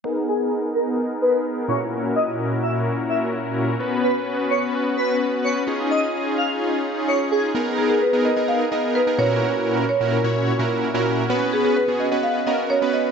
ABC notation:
X:1
M:4/4
L:1/16
Q:1/4=128
K:G#m
V:1 name="Digital synth lead"
z2 G z3 A z3 B2 z2 c z | z2 d z3 e z3 e z4 z | z2 B z3 c z3 B2 z2 c z | z2 d z3 ^e z4 z c z G z |
z16 | z16 | z16 |]
V:2 name="Marimba"
z16 | z16 | z16 | z16 |
z2 G G B2 d d ^e2 d2 B2 c2- | c4 c2 A8 z2 | z2 G G B2 d d ^e2 d2 c2 d2 |]
V:3 name="Analog polysynth"
[B,DGA]12- [B,DGA]2 [A,,CEFA]2- | [A,,CEFA]16 | [B,CFB]16 | [CD^EG]16 |
[B,DGA]4 z [B,DGA]2 [B,DGA]2 z [B,DGA]2 z [B,DGA] [A,,CEFA]2- | [A,,CEFA]4 z [A,,CEFA]2 [A,,CEFc]2 z [A,,CEFA]2 z [A,,CEFA]2 z | [B,CFB]4 z [B,CFG]2 [B,CFB]2 z [B,CFA]2 z [B,CFB]2 z |]